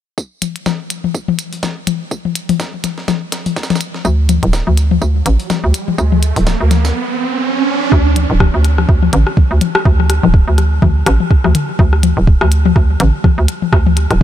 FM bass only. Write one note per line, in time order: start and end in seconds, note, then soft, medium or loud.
4.05 4.39 D2 loud
4.43 4.63 D1 medium
4.67 4.99 D2 medium
5.02 5.23 D2 medium
5.26 5.37 A1 loud
5.64 5.73 D2 medium
5.98 6.33 D2 loud
6.36 6.56 D1 medium
6.61 6.93 D2 medium
7.92 8.26 D2 loud
8.30 8.50 D1 medium
8.54 8.86 D2 medium
8.89 9.10 D2 medium
9.13 9.25 A1 loud
9.51 9.60 D2 medium
9.85 10.20 D2 medium
10.23 10.43 D1 medium
10.48 10.80 D2 medium
10.82 11.03 D2 medium
11.06 11.18 A1 loud
11.44 11.53 D2 medium
11.79 12.14 D2 loud
12.17 12.37 D1 medium
12.41 12.73 D2 medium
12.76 12.97 D2 medium
13.00 13.12 A1 loud
13.38 13.47 D2 medium
13.73 14.07 D2 loud
14.11 14.23 D1 medium